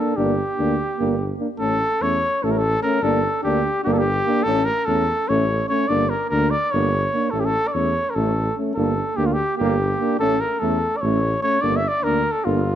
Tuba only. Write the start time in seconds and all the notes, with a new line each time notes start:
0.17 G1
0.59 D2
1.00 G1
1.60 A1
2.01 E2
2.44 A1
3.02 G1
3.44 D2
3.86 G1
4.46 A1
4.87 E2
5.29 A1
5.90 G1
6.31 D2
6.73 G1
7.33 A1
7.75 E2
8.16 A1
8.76 G1
9.17 D2
9.60 G1
10.20 A1
10.62 E2
11.03 A1
11.63 G1
12.04 D2
12.46 G1